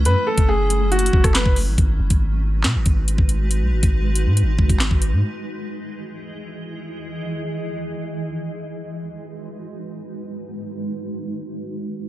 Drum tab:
HH |x--------x--------x-----x-x-x----x--x-----o-----|x--------x--------------x-----x-----x-----x-----|x--------x--------x-----x--------x--x-----x-----|------------------------------------------------|
CP |------------------------------------x-----------|------------------------x-----------------------|------------------------------------x-----------|------------------------------------------------|
SD |---------------------------------r--o-----------|------------------------o-----------------------|------------------------------------o-----------|------------------------------------------------|
BD |---------o--------------------o--o-----o--------|o--------o--------------------o--------o--------|---------o--------------------o--o-----o--------|------------------------------------------------|

HH |------------------------------------------------|------------------------------------------------|------------------------------------------------|
CP |------------------------------------------------|------------------------------------------------|------------------------------------------------|
SD |------------------------------------------------|------------------------------------------------|------------------------------------------------|
BD |------------------------------------------------|------------------------------------------------|------------------------------------------------|